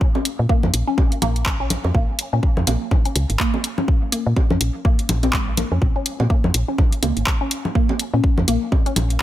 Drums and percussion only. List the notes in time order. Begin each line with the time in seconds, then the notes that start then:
0.01 kick
0.15 low bongo
0.25 closed hi-hat
0.49 kick
0.63 low conga
0.74 closed hi-hat
0.98 kick, low bongo
1.12 closed hi-hat
1.22 closed hi-hat, low conga
1.36 closed hi-hat
1.46 kick, clap
1.70 closed hi-hat, low conga
1.84 low bongo
1.94 kick
2.19 closed hi-hat
2.43 kick
2.57 low conga
2.67 closed hi-hat, low bongo
2.91 kick, low conga
3.05 closed hi-hat
3.16 closed hi-hat
3.30 closed hi-hat
3.40 kick, clap
3.54 low bongo
3.64 closed hi-hat
3.78 low conga
3.88 kick
4.12 closed hi-hat
4.36 kick, low bongo
4.50 low conga
4.61 closed hi-hat
4.85 kick
4.99 closed hi-hat
5.09 closed hi-hat, low conga
5.23 closed hi-hat, low bongo
5.33 kick, clap
5.57 closed hi-hat, low conga
5.82 kick
6.06 closed hi-hat
6.20 low bongo
6.30 kick
6.44 low conga
6.54 closed hi-hat
6.78 kick, low conga
6.92 closed hi-hat
7.03 closed hi-hat, low bongo
7.17 closed hi-hat
7.27 kick, clap
7.51 closed hi-hat
7.65 low conga
7.75 kick
7.89 low bongo
7.99 closed hi-hat
8.24 kick
8.38 low conga
8.48 closed hi-hat
8.72 kick, low bongo
8.86 closed hi-hat
8.96 closed hi-hat, low conga
9.10 closed hi-hat